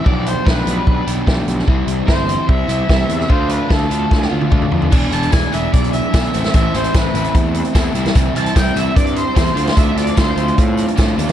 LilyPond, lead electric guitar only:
\new Staff \with { instrumentName = "Lead electric guitar" } { \time 4/4 \key d \dorian \tempo 4 = 148 d''8 c''8 b'4. r4. | r4 c''4 e''8 e''4. | c''8 b'8 a'4. r4. | r8 a''8 gis''8 e''8 d''8 e''4. |
e''8 c''8 b'4 r2 | r8 a''8 g''8 e''8 d''8 c''4. | e''8 d''8 c''4 r2 | }